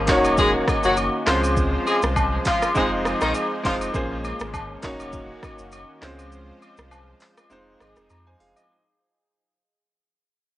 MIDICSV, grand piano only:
0, 0, Header, 1, 2, 480
1, 0, Start_track
1, 0, Tempo, 594059
1, 1267, Time_signature, 4, 2, 24, 8
1, 8547, End_track
2, 0, Start_track
2, 0, Title_t, "Grand piano"
2, 0, Program_c, 0, 0
2, 0, Control_c, 0, 64, 127
2, 0, Note_on_c, 0, 58, 89
2, 0, Note_on_c, 0, 61, 79
2, 0, Note_on_c, 0, 65, 79
2, 0, Note_on_c, 0, 68, 83
2, 0, Note_on_c, 0, 72, 100
2, 58, Note_off_c, 0, 58, 0
2, 58, Note_on_c, 0, 58, 91
2, 63, Note_off_c, 0, 61, 0
2, 63, Note_on_c, 0, 61, 84
2, 68, Note_on_c, 0, 63, 87
2, 73, Note_on_c, 0, 66, 84
2, 78, Note_on_c, 0, 73, 104
2, 79, Control_c, 0, 64, 0
2, 82, Note_off_c, 0, 65, 0
2, 84, Note_off_c, 0, 68, 0
2, 86, Note_off_c, 0, 72, 0
2, 208, Control_c, 0, 64, 127
2, 835, Note_off_c, 0, 58, 0
2, 838, Note_off_c, 0, 61, 0
2, 840, Note_off_c, 0, 63, 0
2, 843, Note_off_c, 0, 66, 0
2, 845, Note_off_c, 0, 73, 0
2, 1018, Note_on_c, 0, 56, 96
2, 1023, Note_on_c, 0, 60, 83
2, 1028, Note_on_c, 0, 61, 84
2, 1032, Note_on_c, 0, 65, 85
2, 1036, Control_c, 0, 64, 0
2, 1038, Note_on_c, 0, 72, 103
2, 1162, Control_c, 0, 64, 127
2, 1795, Note_off_c, 0, 56, 0
2, 1798, Note_off_c, 0, 60, 0
2, 1800, Note_off_c, 0, 61, 0
2, 1803, Note_off_c, 0, 65, 0
2, 1805, Note_off_c, 0, 72, 0
2, 2217, Note_on_c, 0, 56, 93
2, 2222, Note_on_c, 0, 60, 84
2, 2227, Note_on_c, 0, 63, 86
2, 2232, Note_on_c, 0, 65, 84
2, 2237, Note_on_c, 0, 72, 97
2, 2240, Control_c, 0, 64, 0
2, 2383, Control_c, 0, 64, 127
2, 2808, Note_off_c, 0, 56, 0
2, 2810, Note_off_c, 0, 60, 0
2, 2813, Note_off_c, 0, 63, 0
2, 2815, Note_off_c, 0, 65, 0
2, 2818, Note_off_c, 0, 72, 0
2, 2937, Note_on_c, 0, 56, 92
2, 2942, Note_on_c, 0, 60, 80
2, 2947, Note_on_c, 0, 63, 82
2, 2952, Note_on_c, 0, 65, 79
2, 2957, Note_on_c, 0, 72, 97
2, 3113, Note_off_c, 0, 56, 0
2, 3116, Note_off_c, 0, 60, 0
2, 3118, Note_off_c, 0, 63, 0
2, 3121, Note_off_c, 0, 65, 0
2, 3123, Note_off_c, 0, 72, 0
2, 3177, Note_on_c, 0, 58, 88
2, 3182, Note_on_c, 0, 61, 77
2, 3187, Note_on_c, 0, 65, 77
2, 3192, Note_on_c, 0, 68, 82
2, 3197, Note_on_c, 0, 72, 94
2, 3199, Control_c, 0, 64, 0
2, 3324, Control_c, 0, 64, 127
2, 3843, Note_off_c, 0, 58, 0
2, 3846, Note_off_c, 0, 61, 0
2, 3849, Note_off_c, 0, 65, 0
2, 3851, Note_off_c, 0, 68, 0
2, 3854, Note_off_c, 0, 72, 0
2, 3896, Note_on_c, 0, 58, 97
2, 3902, Note_on_c, 0, 61, 87
2, 3906, Note_on_c, 0, 63, 87
2, 3912, Note_on_c, 0, 66, 86
2, 3917, Note_on_c, 0, 73, 109
2, 3918, Control_c, 0, 64, 0
2, 4072, Control_c, 0, 64, 127
2, 4675, Note_off_c, 0, 58, 0
2, 4677, Note_off_c, 0, 61, 0
2, 4680, Note_off_c, 0, 63, 0
2, 4682, Note_off_c, 0, 66, 0
2, 4685, Note_off_c, 0, 73, 0
2, 4857, Note_on_c, 0, 56, 91
2, 4862, Note_on_c, 0, 60, 83
2, 4867, Note_on_c, 0, 61, 83
2, 4872, Note_on_c, 0, 65, 86
2, 4877, Note_on_c, 0, 72, 97
2, 4879, Control_c, 0, 64, 0
2, 4999, Control_c, 0, 64, 127
2, 5635, Note_off_c, 0, 56, 0
2, 5637, Note_off_c, 0, 60, 0
2, 5640, Note_off_c, 0, 61, 0
2, 5642, Note_off_c, 0, 65, 0
2, 5645, Note_off_c, 0, 72, 0
2, 6057, Note_on_c, 0, 56, 92
2, 6062, Note_on_c, 0, 60, 83
2, 6067, Note_on_c, 0, 63, 86
2, 6072, Note_on_c, 0, 65, 82
2, 6077, Note_on_c, 0, 72, 106
2, 6079, Control_c, 0, 64, 0
2, 6238, Control_c, 0, 64, 127
2, 6547, Note_on_c, 0, 82, 68
2, 6552, Note_off_c, 0, 72, 0
2, 6648, Note_off_c, 0, 56, 0
2, 6650, Note_off_c, 0, 60, 0
2, 6653, Note_off_c, 0, 63, 0
2, 6655, Note_off_c, 0, 65, 0
2, 6673, Note_off_c, 0, 82, 0
2, 6679, Note_on_c, 0, 80, 72
2, 6684, Note_on_c, 0, 72, 61
2, 6782, Note_off_c, 0, 80, 0
2, 6784, Note_off_c, 0, 72, 0
2, 6787, Note_on_c, 0, 77, 73
2, 6792, Note_on_c, 0, 68, 62
2, 6912, Note_off_c, 0, 77, 0
2, 6915, Note_off_c, 0, 68, 0
2, 6919, Note_on_c, 0, 75, 67
2, 7038, Control_c, 0, 64, 0
2, 7147, Note_off_c, 0, 75, 0
2, 8547, End_track
0, 0, End_of_file